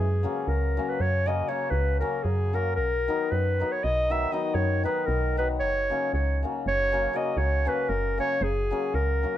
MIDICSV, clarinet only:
0, 0, Header, 1, 2, 480
1, 0, Start_track
1, 0, Key_signature, 6, "major"
1, 0, Tempo, 513699
1, 2595, Time_signature, 11, 3, 24, 8
1, 8762, End_track
2, 0, Start_track
2, 0, Title_t, "Clarinet"
2, 0, Program_c, 0, 71
2, 0, Note_on_c, 0, 68, 75
2, 451, Note_on_c, 0, 70, 70
2, 465, Note_off_c, 0, 68, 0
2, 833, Note_on_c, 0, 71, 77
2, 847, Note_off_c, 0, 70, 0
2, 945, Note_on_c, 0, 73, 90
2, 959, Note_off_c, 0, 71, 0
2, 1188, Note_on_c, 0, 75, 80
2, 1202, Note_off_c, 0, 73, 0
2, 1387, Note_on_c, 0, 73, 77
2, 1401, Note_off_c, 0, 75, 0
2, 1589, Note_on_c, 0, 71, 90
2, 1603, Note_off_c, 0, 73, 0
2, 1858, Note_off_c, 0, 71, 0
2, 1864, Note_on_c, 0, 70, 67
2, 2088, Note_on_c, 0, 68, 75
2, 2102, Note_off_c, 0, 70, 0
2, 2379, Note_on_c, 0, 70, 80
2, 2393, Note_off_c, 0, 68, 0
2, 2570, Note_off_c, 0, 70, 0
2, 2575, Note_on_c, 0, 70, 85
2, 3095, Note_on_c, 0, 71, 85
2, 3109, Note_off_c, 0, 70, 0
2, 3473, Note_on_c, 0, 73, 86
2, 3487, Note_off_c, 0, 71, 0
2, 3585, Note_on_c, 0, 75, 100
2, 3599, Note_off_c, 0, 73, 0
2, 3843, Note_on_c, 0, 76, 89
2, 3857, Note_off_c, 0, 75, 0
2, 4040, Note_on_c, 0, 75, 82
2, 4054, Note_off_c, 0, 76, 0
2, 4247, Note_on_c, 0, 73, 93
2, 4261, Note_off_c, 0, 75, 0
2, 4521, Note_off_c, 0, 73, 0
2, 4527, Note_on_c, 0, 71, 83
2, 4731, Note_on_c, 0, 70, 88
2, 4745, Note_off_c, 0, 71, 0
2, 5017, Note_off_c, 0, 70, 0
2, 5029, Note_on_c, 0, 71, 85
2, 5123, Note_off_c, 0, 71, 0
2, 5231, Note_on_c, 0, 73, 94
2, 5692, Note_off_c, 0, 73, 0
2, 5737, Note_on_c, 0, 73, 69
2, 5994, Note_off_c, 0, 73, 0
2, 6241, Note_on_c, 0, 73, 103
2, 6697, Note_on_c, 0, 75, 84
2, 6711, Note_off_c, 0, 73, 0
2, 6893, Note_on_c, 0, 73, 97
2, 6907, Note_off_c, 0, 75, 0
2, 7178, Note_on_c, 0, 71, 87
2, 7192, Note_off_c, 0, 73, 0
2, 7373, Note_on_c, 0, 70, 86
2, 7387, Note_off_c, 0, 71, 0
2, 7652, Note_off_c, 0, 70, 0
2, 7662, Note_on_c, 0, 73, 95
2, 7878, Note_on_c, 0, 68, 88
2, 7892, Note_off_c, 0, 73, 0
2, 8361, Note_on_c, 0, 70, 95
2, 8375, Note_off_c, 0, 68, 0
2, 8762, Note_off_c, 0, 70, 0
2, 8762, End_track
0, 0, End_of_file